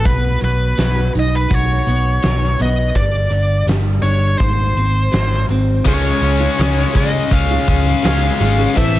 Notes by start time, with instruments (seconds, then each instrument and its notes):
Already playing: steel-string acoustic guitar B3
0.05 picked electric bass B1, steel-string acoustic guitar B2, lead electric guitar B4, kick, closed hi-hat
0.41 picked electric bass B1, steel-string acoustic guitar F#3, lead electric guitar B4, closed hi-hat
0.78 picked electric bass B1, steel-string acoustic guitar F#3, snare, closed hi-hat
1.15 picked electric bass B1, steel-string acoustic guitar D#4, closed hi-hat
1.19 lead electric guitar D#5
1.35 lead electric guitar B4
1.49 picked electric bass B1, steel-string acoustic guitar F#4, kick, closed hi-hat
1.54 lead electric guitar C#5
1.87 picked electric bass B1, steel-string acoustic guitar B3, closed hi-hat
2.23 picked electric bass B1, steel-string acoustic guitar F#3, snare, closed hi-hat
2.43 snare
2.59 picked electric bass B1, steel-string acoustic guitar B3, lead electric guitar D#5, closed hi-hat
2.95 picked electric bass G1, steel-string acoustic guitar G2, lead electric guitar D5, kick, closed hi-hat
3.30 picked electric bass G1, steel-string acoustic guitar D3, closed hi-hat
3.66 picked electric bass G1, steel-string acoustic guitar G3, snare, closed hi-hat
4.02 picked electric bass G1, steel-string acoustic guitar D4, lead electric guitar C#5, closed hi-hat
4.38 picked electric bass G#1, steel-string acoustic guitar G#2, lead electric guitar C5, kick, closed hi-hat
4.75 picked electric bass G#1, steel-string acoustic guitar C4, closed hi-hat
5.12 picked electric bass G#1, steel-string acoustic guitar F#3, snare, closed hi-hat
5.33 snare
5.48 picked electric bass G#1, steel-string acoustic guitar C4, closed hi-hat
5.85 picked electric bass C#2, steel-string acoustic guitar C#3 G#3 C#4 F4 G#4, lead electric guitar C#5, kick, crash
6.21 picked electric bass C#2, overdriven electric guitar C#3 G#3 C#4, open hi-hat
6.39 steel-string acoustic guitar C#4 F4 G#4
6.57 picked electric bass C#2, steel-string acoustic guitar C#3 G#3 C#4 F4 G#4, snare, open hi-hat
6.93 picked electric bass C#3, overdriven electric guitar C#3, steel-string acoustic guitar G#3 C#4 F4 G#4, lead electric guitar D#5, kick, open hi-hat
7.12 muted steel-string acoustic guitar stroke
7.31 picked electric bass C#2, overdriven electric guitar C#3 G#3 C#4, lead electric guitar F5, kick, open hi-hat
7.49 steel-string acoustic guitar C#4 F4 G#4
7.67 picked electric bass C#2, overdriven electric guitar C#3 G#3 C#4, kick, open hi-hat
7.86 muted steel-string acoustic guitar stroke
8.02 picked electric bass C#2, steel-string acoustic guitar C#3 G#3 C#4 F4 G#4, snare, open hi-hat
8.06 lead electric guitar F5
8.40 picked electric bass G#1, overdriven electric guitar C#3, steel-string acoustic guitar G#3 C#4 F4 G#4, open hi-hat
8.57 steel-string acoustic guitar C#4 F4 G#4
8.74 picked electric bass A1, steel-string acoustic guitar A2 E3 C4 E4 A4, overdriven electric guitar A3, lead electric guitar E5, kick, open hi-hat
8.97 snare